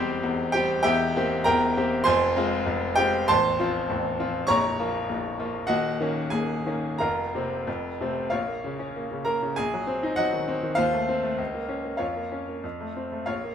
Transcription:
grand piano
Already playing: E1 E2 G3 C4 G4 C5 G5 C6
0.23 E1 E2
0.52 G3 C4 G4 G5
0.83 E1 E2 G4 E5 G5
1.16 A#3 C4 G4
1.44 E1 E2 A#4 G5 A#5
1.77 A#3 C4 G4
2.04 F1 F2 C5 G#5 C6
2.36 G#3 C4 F4
2.66 F1 F2
2.96 G#3 C4 F4 G4 G5
3.28 A0 A1 C5 A5 C6
3.59 F3 C4 F4
3.90 A0 A1
4.19 F3 C4 F4
4.47 A#0 A#1 C#5 A#5 C#6
4.79 F3 A#3 F4
5.09 A#0 A#1
5.39 F3 A#3 F4
5.67 D#1 D#2 F#4 D#5 F#5
6.01 D#3 A#3 C#4
6.30 D#1 D#2 G#4 G#5
6.66 D#3 A#3 C#4
6.98 F1 F2 A#4 F5 A#5
7.35 C3 A#3 C4
7.67 F1 F2
8.01 C3 A3 C4
8.30 A#1 F4 C#5 F5
8.48 A#3
8.64 C#3
8.79 C#4
8.96 A#3
9.11 C#3
9.25 A#3 A#4 A#5
9.43 C#3
9.56 A#1 G#4 G#5
9.74 F#3
9.87 C4
10.03 D#4
10.16 F#3 F#4 D#5 F#5
10.33 D#3
10.48 C4
10.63 D#3
10.75 D#2 F4 C5 F5
10.93 A3
11.08 C4
11.23 A3
11.38 C#2
11.54 A#3
11.69 C#4
11.84 A#3
11.97 F2 F4 C#5 F5
12.16 A#3
12.32 C#4
12.48 A#3
12.64 F2
12.80 A3
12.96 C4
13.12 A3
13.26 A#1 F4 C#5 F5
13.44 A#3

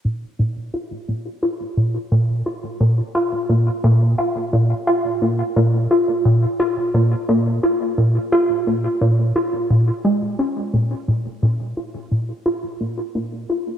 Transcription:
analog synth bass
0.05 A#2
0.39 A#2
0.74 F4
1.08 A#2
1.43 F4
1.77 A#2
2.11 A#2
2.46 F4
2.80 A#2
3.15 F4
3.49 A#2
3.84 A#2
4.18 F4
4.53 A#2
4.87 F4
5.22 A#2
5.56 A#2
5.91 F4
6.25 A#2
6.60 F4
6.94 A#2
7.29 A#2
7.63 F4
7.98 A#2
8.32 F4
8.67 A#2
9.01 A#2
9.36 F4
9.70 A#2
10.04 G#3
10.39 C#4
10.73 A#2
11.08 A#2
11.42 A#2
11.77 F4
12.11 A#2
12.46 F4
12.80 A#2
13.15 A#2
13.49 F4

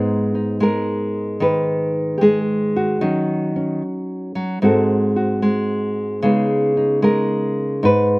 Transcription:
nylon-string guitar
Already playing: G#2 G#3 B3 D#4
0.35 D#4
0.60 G#3 A#4
1.40 D#3 B4
2.18 G#3 G4
2.23 G#4
2.76 F#4
3.01 D#3 F#3 C#4
3.56 C#4
4.35 F#3
4.62 G#2 G#3 C4 F#4 A4
5.16 F#4
5.42 G#3
6.22 C#3 G#3 B3 D#4 G#4
6.77 D#4
7.02 G#3 A#4
7.83 G#2 B4

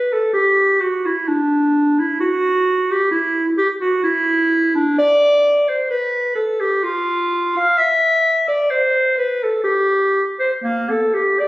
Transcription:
clarinet
Already playing: B4
0.12 A4
0.33 G4
0.80 F#4
1.06 E4
1.28 D4
1.99 E4
2.20 F#4
2.91 G4
3.11 E4
3.58 G4
3.81 F#4
4.03 E4
4.75 D4
4.99 D5
5.68 C5
5.90 B4
6.35 A4
6.60 G4
6.83 F4
7.57 F5
7.78 E5
8.48 D5
8.70 C5
9.17 B4
9.43 A4
9.64 G4
10.39 C5
10.64 A#3
10.90 A4
11.14 G4
11.39 D5

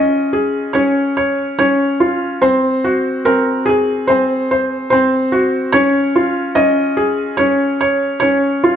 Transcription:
felt piano
Already playing: C#4 F4 D#5
0.33 G#4
0.73 C#4 C#5
1.17 C#5
1.59 C#4 C#5
2.00 F4
2.42 C4 C5
2.84 F#4
3.25 C4 A#4
3.66 G#4
4.07 C4 C5
4.51 C5
4.90 C4 C5
5.32 F#4
5.72 C#4 C#5
6.16 F4
6.55 C#4 D#5
6.97 G#4
7.37 C#4 C#5
7.81 C#5
8.20 C#4 C#5
8.64 F4

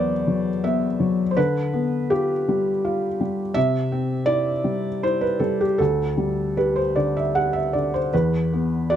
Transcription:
felt piano
Already playing: E2 F#3 B3 A4 B4 C5 D5
0.27 F#3
0.64 B3 E5
1.00 F#3
1.31 C5
1.37 D3 B4
1.73 B3
2.10 F4 G4
2.48 G3
2.85 F4
3.21 G3
3.54 C3 E5
3.92 C4
4.26 E4 D5
4.64 G3
5.03 E4 C5
5.21 B4
5.39 G3 A4
5.61 G4
5.78 D2 A4
6.17 G3
6.57 G4 B4
6.76 C5
6.96 D3 D5
7.17 E5
7.35 G4 F#5
7.53 E5
7.73 D3 D5
7.94 C5
8.13 E2 B4
8.53 B3
8.90 F#4 D5

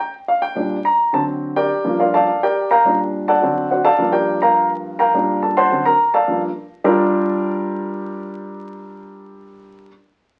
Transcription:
grand piano
0.00 G5
0.28 F5
0.42 G5
0.55 A#2 G3 D4
0.85 A#5
1.13 D3 F#3 C4 A5
1.56 G4 A#4 D5 G5
1.84 G2 F3 A#3
2.00 F4 A#4 D5 F5
2.14 A4 D5 F5 A5
2.43 G4 A#4 D5 G5
2.71 A#4 F5 G5 A#5
2.84 A#2 G3 D4
3.28 A4 D5 F#5 A5
3.42 D3 F#3 C4
3.71 F#4 C5 D5 F#5
3.85 A4 D5 F5 A5
3.98 G2 F3 A#3
4.12 G4 A#4 D5 G5
4.42 A#4 F5 G5 A#5
4.99 A#4 F5 G5 A#5
5.14 A#2 G3 D4
5.42 A4 A5
5.57 C5 F#5 A5 C6
5.71 D3 F#3 C4
5.86 A#4 A#5
6.14 A4 D5 F5 A5
6.28 G2 F3 A#3
6.84 G3 D4 F4 G4 A4 A#4

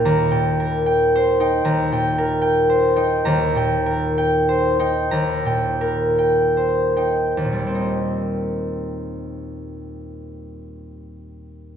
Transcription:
harp
Already playing: D#4 A#4 D#5 G5
0.05 D#2 A#5
0.31 A#2 G5
0.60 A#4
0.86 G5
1.16 C5
1.40 D#4 G5
1.65 D#2 A#5
1.92 A#2 G5
2.18 A#4
2.42 G5
2.70 C5
2.96 D#4 G5
3.25 D#2 A#5
3.56 A#2 G5
3.86 A#4
4.18 G5
4.49 C5
4.79 D#4 G5
5.11 D#2 A#5
5.45 A#2 G5
5.81 A#4
6.18 G5
6.57 C5
6.97 D#4 G5
7.37 D#2
7.44 A#2
7.52 G3
7.59 A#3
7.67 C4
7.75 D#4

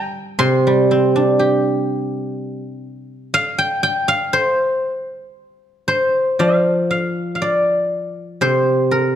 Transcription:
guzheng
Already playing: G3 F5 G5 A#5
0.39 C3 C6
0.67 G3
0.91 C4
1.13 D4 B5
1.31 A#5
1.39 G4
3.34 F5
3.59 G5
3.83 G5
4.08 F5
4.33 C5
5.88 C5
6.39 F3 F5
6.91 F5
7.35 F5
7.42 D5
8.41 C3 C5
8.91 A#4

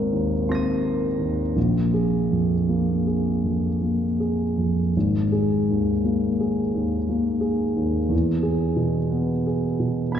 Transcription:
grand piano
Already playing: G#1 D#2 C4 A#4
0.12 D#2
0.49 C4 C6 A#6
0.55 D#7
0.85 A#4
1.19 D#2
1.56 A#1
1.94 G#4
2.31 F2
2.69 A#3
3.07 G#4
3.44 F2
3.82 A#3
4.20 G#4
4.58 F2
4.96 G#1
5.32 G#4
5.70 D#2
6.05 A#3
6.40 G#4
6.75 D#2
7.09 A#3
7.41 G#4
7.76 D#2
8.09 E2
8.43 G#4
8.76 B2
9.10 B3
9.46 G#4
9.80 B2
10.12 B3 B5 G#6

